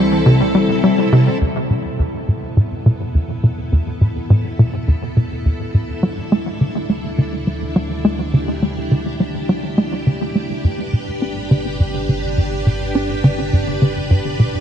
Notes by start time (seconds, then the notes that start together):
Already playing: C2 G3 C4 E4 A4
0.26 C3
0.55 G3
0.84 G3
1.12 C3
1.41 E2 B3 E4 A4
1.70 B2
1.99 E2
2.28 A2
2.57 A2
2.86 B2
3.14 E2
3.43 B2
3.72 E2
4.01 A2
4.30 A2
4.59 B2
4.88 E2
5.17 B2
5.45 E2
5.74 A2
6.03 D2 G3 D4
6.32 A3
6.61 D3
6.89 A3
7.18 D3
7.47 G3
7.76 G3
8.05 A3
8.33 D3 G4
8.62 A3
8.91 D3
9.20 G3
9.49 G3
9.78 A3
10.07 D3
10.35 A3
10.64 G1 G2 D4 B4
10.93 B2
11.22 D4
11.51 D3
11.80 G2
12.09 D3
12.37 G2
12.66 B2
12.95 D4
13.24 D3
13.53 G2
13.82 D3
14.10 G2
14.39 B2